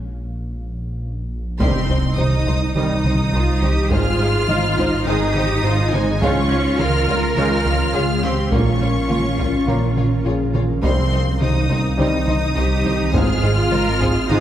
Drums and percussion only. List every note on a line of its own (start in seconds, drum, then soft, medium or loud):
1.60 taiko loud
2.18 taiko mid medium
2.47 taiko medium
2.76 taiko mid medium
3.05 taiko mid medium
3.63 taiko mid medium
3.91 taiko loud
4.49 taiko mid medium
4.78 taiko medium
5.06 taiko mid medium
5.35 taiko mid medium
5.93 taiko mid medium
6.21 taiko loud
6.79 taiko mid medium
7.08 taiko medium
7.37 taiko mid medium
7.66 taiko mid medium
8.23 taiko mid medium
8.52 taiko loud
9.10 taiko mid medium
9.39 taiko medium
9.68 taiko mid medium
9.97 taiko mid medium
10.54 taiko mid medium
10.83 taiko loud
11.41 taiko mid medium
11.70 taiko medium
11.99 taiko mid medium
12.28 taiko mid medium
12.85 taiko mid medium
13.14 taiko loud
13.72 taiko mid medium
14.01 taiko medium
14.30 taiko mid medium